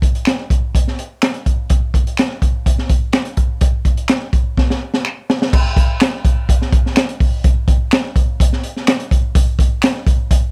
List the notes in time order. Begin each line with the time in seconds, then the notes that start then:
0.02 kick, closed hi-hat
0.15 closed hi-hat
0.25 finger snap, snare, closed hi-hat
0.50 kick, closed hi-hat
0.75 kick, closed hi-hat
0.88 snare
0.99 closed hi-hat
1.22 finger snap, snare, closed hi-hat
1.34 closed hi-hat
1.46 kick, closed hi-hat
1.70 kick, closed hi-hat
1.94 kick, closed hi-hat
2.07 closed hi-hat
2.17 finger snap, snare, closed hi-hat
2.42 kick, closed hi-hat
2.66 kick, closed hi-hat
2.78 snare
2.89 kick, closed hi-hat
3.12 finger snap, snare, closed hi-hat
3.25 closed hi-hat
3.37 kick, closed hi-hat
3.61 kick, closed hi-hat
3.85 kick, closed hi-hat
3.97 closed hi-hat
4.08 finger snap, snare, closed hi-hat
4.33 kick, closed hi-hat
4.57 kick, snare
4.70 snare
4.94 snare
5.05 finger snap
5.30 snare
5.42 snare
5.53 kick, crash
5.77 kick, closed hi-hat
6.00 finger snap, snare, closed hi-hat
6.25 kick, closed hi-hat
6.49 kick, closed hi-hat
6.62 snare
6.72 kick, closed hi-hat
6.86 snare
6.96 finger snap, snare, closed hi-hat
7.09 closed hi-hat
7.20 kick, open hi-hat
7.44 kick, closed hi-hat
7.68 kick, closed hi-hat
7.91 finger snap, snare, closed hi-hat
8.16 kick, closed hi-hat
8.40 kick, closed hi-hat
8.53 snare
8.63 closed hi-hat
8.77 snare
8.87 finger snap, snare, closed hi-hat
9.00 closed hi-hat
9.11 kick, closed hi-hat
9.35 kick, closed hi-hat
9.59 kick, closed hi-hat
9.82 finger snap, snare, closed hi-hat
10.07 kick, closed hi-hat
10.31 kick, closed hi-hat